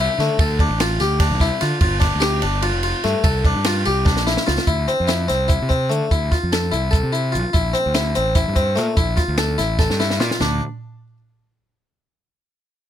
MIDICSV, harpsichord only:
0, 0, Header, 1, 2, 480
1, 0, Start_track
1, 0, Key_signature, -1, "minor"
1, 0, Tempo, 408719
1, 464, Time_signature, 7, 3, 24, 8
1, 15143, End_track
2, 0, Start_track
2, 0, Title_t, "Harpsichord"
2, 0, Program_c, 0, 6
2, 6, Note_on_c, 0, 64, 81
2, 234, Note_on_c, 0, 57, 82
2, 235, Note_off_c, 0, 64, 0
2, 468, Note_off_c, 0, 57, 0
2, 476, Note_on_c, 0, 69, 94
2, 706, Note_on_c, 0, 62, 77
2, 709, Note_off_c, 0, 69, 0
2, 941, Note_on_c, 0, 65, 81
2, 944, Note_off_c, 0, 62, 0
2, 1178, Note_on_c, 0, 67, 84
2, 1181, Note_off_c, 0, 65, 0
2, 1411, Note_on_c, 0, 62, 89
2, 1418, Note_off_c, 0, 67, 0
2, 1655, Note_off_c, 0, 62, 0
2, 1656, Note_on_c, 0, 64, 85
2, 1889, Note_on_c, 0, 65, 78
2, 1896, Note_off_c, 0, 64, 0
2, 2118, Note_off_c, 0, 65, 0
2, 2132, Note_on_c, 0, 65, 86
2, 2347, Note_on_c, 0, 62, 76
2, 2374, Note_off_c, 0, 65, 0
2, 2587, Note_on_c, 0, 67, 86
2, 2601, Note_off_c, 0, 62, 0
2, 2840, Note_off_c, 0, 67, 0
2, 2843, Note_on_c, 0, 62, 87
2, 3083, Note_on_c, 0, 65, 93
2, 3088, Note_off_c, 0, 62, 0
2, 3320, Note_off_c, 0, 65, 0
2, 3334, Note_on_c, 0, 65, 76
2, 3569, Note_on_c, 0, 57, 82
2, 3573, Note_off_c, 0, 65, 0
2, 3803, Note_on_c, 0, 69, 101
2, 3811, Note_off_c, 0, 57, 0
2, 4047, Note_off_c, 0, 69, 0
2, 4059, Note_on_c, 0, 62, 78
2, 4295, Note_off_c, 0, 62, 0
2, 4303, Note_on_c, 0, 65, 83
2, 4531, Note_on_c, 0, 67, 85
2, 4537, Note_off_c, 0, 65, 0
2, 4761, Note_on_c, 0, 62, 92
2, 4771, Note_off_c, 0, 67, 0
2, 5006, Note_off_c, 0, 62, 0
2, 5012, Note_on_c, 0, 64, 80
2, 5245, Note_on_c, 0, 65, 86
2, 5251, Note_off_c, 0, 64, 0
2, 5488, Note_off_c, 0, 65, 0
2, 5489, Note_on_c, 0, 64, 85
2, 5730, Note_off_c, 0, 64, 0
2, 5730, Note_on_c, 0, 60, 68
2, 5959, Note_on_c, 0, 64, 76
2, 5971, Note_off_c, 0, 60, 0
2, 6204, Note_on_c, 0, 60, 77
2, 6206, Note_off_c, 0, 64, 0
2, 6437, Note_on_c, 0, 64, 79
2, 6448, Note_off_c, 0, 60, 0
2, 6682, Note_on_c, 0, 60, 75
2, 6685, Note_off_c, 0, 64, 0
2, 6924, Note_on_c, 0, 57, 69
2, 6928, Note_off_c, 0, 60, 0
2, 7169, Note_off_c, 0, 57, 0
2, 7179, Note_on_c, 0, 64, 83
2, 7417, Note_off_c, 0, 64, 0
2, 7418, Note_on_c, 0, 65, 73
2, 7657, Note_off_c, 0, 65, 0
2, 7661, Note_on_c, 0, 69, 75
2, 7887, Note_on_c, 0, 64, 81
2, 7899, Note_off_c, 0, 69, 0
2, 8113, Note_on_c, 0, 69, 85
2, 8132, Note_off_c, 0, 64, 0
2, 8365, Note_off_c, 0, 69, 0
2, 8368, Note_on_c, 0, 64, 68
2, 8600, Note_on_c, 0, 65, 78
2, 8613, Note_off_c, 0, 64, 0
2, 8848, Note_on_c, 0, 64, 92
2, 8849, Note_off_c, 0, 65, 0
2, 9084, Note_on_c, 0, 60, 71
2, 9094, Note_off_c, 0, 64, 0
2, 9329, Note_on_c, 0, 64, 72
2, 9332, Note_off_c, 0, 60, 0
2, 9574, Note_off_c, 0, 64, 0
2, 9576, Note_on_c, 0, 60, 75
2, 9812, Note_on_c, 0, 64, 90
2, 9818, Note_off_c, 0, 60, 0
2, 10050, Note_on_c, 0, 60, 74
2, 10056, Note_off_c, 0, 64, 0
2, 10283, Note_on_c, 0, 57, 76
2, 10295, Note_off_c, 0, 60, 0
2, 10532, Note_off_c, 0, 57, 0
2, 10532, Note_on_c, 0, 64, 87
2, 10766, Note_on_c, 0, 65, 73
2, 10777, Note_off_c, 0, 64, 0
2, 11014, Note_off_c, 0, 65, 0
2, 11016, Note_on_c, 0, 69, 86
2, 11251, Note_on_c, 0, 64, 88
2, 11259, Note_off_c, 0, 69, 0
2, 11496, Note_off_c, 0, 64, 0
2, 11496, Note_on_c, 0, 69, 88
2, 11739, Note_off_c, 0, 69, 0
2, 11741, Note_on_c, 0, 64, 74
2, 11979, Note_on_c, 0, 65, 81
2, 11981, Note_off_c, 0, 64, 0
2, 12221, Note_off_c, 0, 65, 0
2, 12223, Note_on_c, 0, 62, 80
2, 12463, Note_off_c, 0, 62, 0
2, 15143, End_track
0, 0, End_of_file